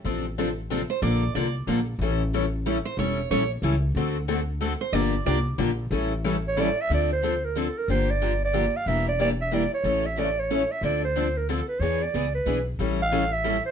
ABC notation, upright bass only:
X:1
M:3/4
L:1/8
Q:"Swing" 1/4=184
K:Dm
V:1 name="Upright bass" clef=bass
A,,,6 | B,,,2 C,,2 B,,,2 | A,,,6 | E,,,2 B,,,2 ^C,,2 |
D,,6 | G,,,2 C,,2 B,,,2 | A,,,6 | D,,6 |
G,,,6 | E,,,6 | A,,,6 | D,,6 |
E,,2 ^C,,2 =B,,,2 | A,,,6 |]